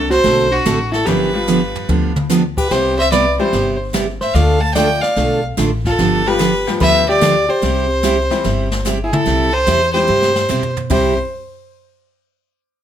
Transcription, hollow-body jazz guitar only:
0, 0, Header, 1, 2, 480
1, 0, Start_track
1, 0, Key_signature, 0, "major"
1, 0, Tempo, 410116
1, 1248, Time_signature, 4, 2, 24, 8
1, 15017, End_track
2, 0, Start_track
2, 0, Title_t, "Hollow-body jazz guitar"
2, 0, Program_c, 0, 26
2, 0, Note_on_c, 0, 62, 83
2, 123, Note_on_c, 0, 66, 88
2, 125, Note_off_c, 0, 62, 0
2, 598, Note_off_c, 0, 66, 0
2, 598, Note_on_c, 0, 62, 78
2, 1076, Note_on_c, 0, 64, 74
2, 1084, Note_off_c, 0, 62, 0
2, 1233, Note_off_c, 0, 64, 0
2, 1233, Note_on_c, 0, 67, 74
2, 2200, Note_off_c, 0, 67, 0
2, 3016, Note_on_c, 0, 67, 71
2, 3160, Note_off_c, 0, 67, 0
2, 3173, Note_on_c, 0, 67, 78
2, 3492, Note_off_c, 0, 67, 0
2, 3498, Note_on_c, 0, 72, 82
2, 3641, Note_off_c, 0, 72, 0
2, 3655, Note_on_c, 0, 71, 87
2, 3950, Note_off_c, 0, 71, 0
2, 3977, Note_on_c, 0, 67, 72
2, 4419, Note_off_c, 0, 67, 0
2, 4928, Note_on_c, 0, 72, 71
2, 5088, Note_off_c, 0, 72, 0
2, 5088, Note_on_c, 0, 74, 75
2, 5401, Note_off_c, 0, 74, 0
2, 5401, Note_on_c, 0, 77, 80
2, 5559, Note_off_c, 0, 77, 0
2, 5564, Note_on_c, 0, 74, 83
2, 5864, Note_off_c, 0, 74, 0
2, 5886, Note_on_c, 0, 74, 73
2, 6366, Note_off_c, 0, 74, 0
2, 6867, Note_on_c, 0, 65, 77
2, 7303, Note_off_c, 0, 65, 0
2, 7345, Note_on_c, 0, 67, 75
2, 7815, Note_off_c, 0, 67, 0
2, 7973, Note_on_c, 0, 71, 95
2, 8268, Note_off_c, 0, 71, 0
2, 8301, Note_on_c, 0, 67, 91
2, 8740, Note_off_c, 0, 67, 0
2, 8766, Note_on_c, 0, 67, 76
2, 10363, Note_off_c, 0, 67, 0
2, 10579, Note_on_c, 0, 64, 59
2, 10679, Note_off_c, 0, 64, 0
2, 10697, Note_on_c, 0, 64, 80
2, 11153, Note_off_c, 0, 64, 0
2, 11153, Note_on_c, 0, 67, 83
2, 11620, Note_off_c, 0, 67, 0
2, 11634, Note_on_c, 0, 67, 74
2, 12554, Note_off_c, 0, 67, 0
2, 12766, Note_on_c, 0, 67, 69
2, 13065, Note_off_c, 0, 67, 0
2, 15017, End_track
0, 0, End_of_file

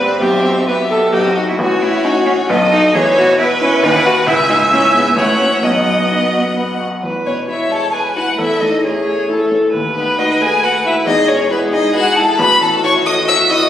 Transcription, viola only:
0, 0, Header, 1, 2, 480
1, 0, Start_track
1, 0, Key_signature, 4, "major"
1, 0, Tempo, 458365
1, 224, Time_signature, 3, 2, 24, 8
1, 2144, Tempo, 446429
1, 5504, Tempo, 461538
1, 8384, Tempo, 445434
1, 14582, End_track
2, 0, Start_track
2, 0, Title_t, "Viola"
2, 0, Program_c, 0, 41
2, 0, Note_on_c, 0, 71, 93
2, 214, Note_off_c, 0, 71, 0
2, 220, Note_on_c, 0, 67, 77
2, 647, Note_off_c, 0, 67, 0
2, 700, Note_on_c, 0, 71, 80
2, 784, Note_off_c, 0, 71, 0
2, 938, Note_on_c, 0, 69, 82
2, 1180, Note_on_c, 0, 67, 82
2, 1196, Note_off_c, 0, 69, 0
2, 1427, Note_on_c, 0, 66, 73
2, 1443, Note_off_c, 0, 67, 0
2, 1668, Note_off_c, 0, 66, 0
2, 2143, Note_on_c, 0, 66, 74
2, 2594, Note_off_c, 0, 66, 0
2, 2628, Note_on_c, 0, 75, 95
2, 3106, Note_on_c, 0, 73, 96
2, 3122, Note_off_c, 0, 75, 0
2, 3578, Note_off_c, 0, 73, 0
2, 3585, Note_on_c, 0, 71, 109
2, 4536, Note_on_c, 0, 76, 122
2, 4552, Note_off_c, 0, 71, 0
2, 5499, Note_off_c, 0, 76, 0
2, 5505, Note_on_c, 0, 73, 91
2, 5985, Note_on_c, 0, 75, 81
2, 6000, Note_off_c, 0, 73, 0
2, 7201, Note_off_c, 0, 75, 0
2, 7438, Note_on_c, 0, 71, 50
2, 7881, Note_off_c, 0, 71, 0
2, 7906, Note_on_c, 0, 73, 51
2, 8370, Note_off_c, 0, 73, 0
2, 8376, Note_on_c, 0, 71, 53
2, 8861, Note_on_c, 0, 69, 57
2, 8877, Note_off_c, 0, 71, 0
2, 9339, Note_off_c, 0, 69, 0
2, 9346, Note_on_c, 0, 68, 55
2, 9830, Note_on_c, 0, 69, 61
2, 9847, Note_off_c, 0, 68, 0
2, 10312, Note_off_c, 0, 69, 0
2, 10318, Note_on_c, 0, 71, 73
2, 11732, Note_off_c, 0, 71, 0
2, 11761, Note_on_c, 0, 68, 75
2, 12226, Note_off_c, 0, 68, 0
2, 12237, Note_on_c, 0, 68, 80
2, 13170, Note_off_c, 0, 68, 0
2, 13179, Note_on_c, 0, 66, 90
2, 14582, Note_off_c, 0, 66, 0
2, 14582, End_track
0, 0, End_of_file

